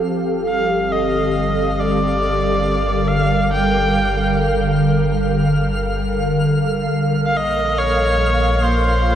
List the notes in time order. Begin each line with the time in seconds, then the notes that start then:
Already playing: C4 G4 A4
0.04 G1 G3 F5 F6
0.49 F5
0.59 D3
0.92 D#5
1.80 D5
1.87 A#4
3.08 F5
3.53 G5
6.90 A#1 A#3
7.26 F5
7.37 D#5
7.78 C#5
7.90 F4
8.64 C5